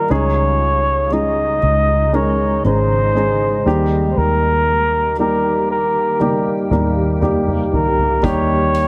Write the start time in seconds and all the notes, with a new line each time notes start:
Already playing: A#3 D#4 F4 G4 G#4 A#4
0.10 C#2 C#3 G#3 C#4 D#4 G#4 C#5
1.11 G#3 C#4 D#4 G#4 D#5
1.63 C#2
2.13 G#3 C#4 D#4 A#4 C#5
2.64 G#1 G#3 C#4 D#4 G#4 C5
3.15 G#3 C#4 D#4 G#4
3.66 D#2 D#3 G3 A#3 D#4 G4
4.11 C5
4.17 D#2 A#4
5.18 G3 A#3 D#4 G4 A#4
5.71 A#4
6.20 G3 A#3 D#4 G4, high tom
6.70 D#2 G3 A#3 D#4 A#4, mid tom
7.21 G3 A#3 D#4 G4, mid tom
7.48 mid tom
7.73 D#3 A#4, floor tom
7.98 floor tom
8.23 D#2 G3 A#3 D#4 G4 C#5, kick, closed hi-hat
8.74 closed hi-hat